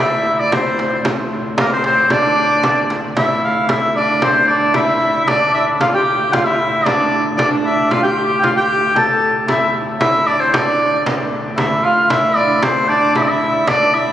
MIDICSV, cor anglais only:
0, 0, Header, 1, 2, 480
1, 0, Start_track
1, 0, Key_signature, -1, "minor"
1, 0, Tempo, 525394
1, 3, Time_signature, 2, 2, 24, 8
1, 12905, End_track
2, 0, Start_track
2, 0, Title_t, "Cor anglais"
2, 0, Program_c, 0, 69
2, 0, Note_on_c, 0, 64, 86
2, 471, Note_off_c, 0, 64, 0
2, 477, Note_on_c, 0, 60, 74
2, 929, Note_off_c, 0, 60, 0
2, 1439, Note_on_c, 0, 58, 77
2, 1563, Note_on_c, 0, 60, 77
2, 1577, Note_off_c, 0, 58, 0
2, 1682, Note_off_c, 0, 60, 0
2, 1687, Note_on_c, 0, 60, 84
2, 1922, Note_on_c, 0, 62, 85
2, 1936, Note_off_c, 0, 60, 0
2, 2650, Note_off_c, 0, 62, 0
2, 2890, Note_on_c, 0, 64, 66
2, 3340, Note_off_c, 0, 64, 0
2, 3371, Note_on_c, 0, 64, 76
2, 3617, Note_on_c, 0, 62, 76
2, 3631, Note_off_c, 0, 64, 0
2, 3851, Note_off_c, 0, 62, 0
2, 3856, Note_on_c, 0, 60, 66
2, 3965, Note_off_c, 0, 60, 0
2, 4095, Note_on_c, 0, 62, 76
2, 4321, Note_off_c, 0, 62, 0
2, 4342, Note_on_c, 0, 64, 83
2, 4828, Note_on_c, 0, 62, 74
2, 4841, Note_off_c, 0, 64, 0
2, 5302, Note_off_c, 0, 62, 0
2, 5307, Note_on_c, 0, 65, 83
2, 5428, Note_on_c, 0, 67, 86
2, 5442, Note_off_c, 0, 65, 0
2, 5775, Note_off_c, 0, 67, 0
2, 5781, Note_on_c, 0, 65, 75
2, 5893, Note_off_c, 0, 65, 0
2, 5906, Note_on_c, 0, 64, 82
2, 5966, Note_on_c, 0, 65, 66
2, 5980, Note_off_c, 0, 64, 0
2, 6025, Note_on_c, 0, 64, 79
2, 6038, Note_off_c, 0, 65, 0
2, 6251, Note_off_c, 0, 64, 0
2, 6257, Note_on_c, 0, 62, 76
2, 6595, Note_off_c, 0, 62, 0
2, 6749, Note_on_c, 0, 62, 76
2, 7193, Note_off_c, 0, 62, 0
2, 7226, Note_on_c, 0, 65, 81
2, 7345, Note_on_c, 0, 67, 76
2, 7358, Note_off_c, 0, 65, 0
2, 7407, Note_on_c, 0, 65, 67
2, 7421, Note_off_c, 0, 67, 0
2, 7471, Note_on_c, 0, 67, 93
2, 7484, Note_off_c, 0, 65, 0
2, 7702, Note_off_c, 0, 67, 0
2, 7707, Note_on_c, 0, 65, 81
2, 7760, Note_off_c, 0, 65, 0
2, 7823, Note_on_c, 0, 67, 94
2, 8185, Note_on_c, 0, 69, 90
2, 8199, Note_off_c, 0, 67, 0
2, 8544, Note_off_c, 0, 69, 0
2, 8658, Note_on_c, 0, 64, 80
2, 8883, Note_off_c, 0, 64, 0
2, 9135, Note_on_c, 0, 64, 95
2, 9376, Note_on_c, 0, 62, 80
2, 9390, Note_off_c, 0, 64, 0
2, 9501, Note_on_c, 0, 60, 70
2, 9514, Note_off_c, 0, 62, 0
2, 9612, Note_off_c, 0, 60, 0
2, 9617, Note_on_c, 0, 62, 75
2, 10064, Note_off_c, 0, 62, 0
2, 10570, Note_on_c, 0, 64, 74
2, 10808, Note_on_c, 0, 65, 75
2, 10821, Note_off_c, 0, 64, 0
2, 10985, Note_off_c, 0, 65, 0
2, 10991, Note_on_c, 0, 65, 55
2, 11057, Note_on_c, 0, 64, 82
2, 11071, Note_off_c, 0, 65, 0
2, 11539, Note_on_c, 0, 60, 71
2, 11552, Note_off_c, 0, 64, 0
2, 11768, Note_off_c, 0, 60, 0
2, 11773, Note_on_c, 0, 62, 78
2, 11995, Note_off_c, 0, 62, 0
2, 12021, Note_on_c, 0, 64, 84
2, 12133, Note_off_c, 0, 64, 0
2, 12141, Note_on_c, 0, 64, 78
2, 12467, Note_off_c, 0, 64, 0
2, 12492, Note_on_c, 0, 62, 78
2, 12730, Note_on_c, 0, 64, 84
2, 12744, Note_off_c, 0, 62, 0
2, 12905, Note_off_c, 0, 64, 0
2, 12905, End_track
0, 0, End_of_file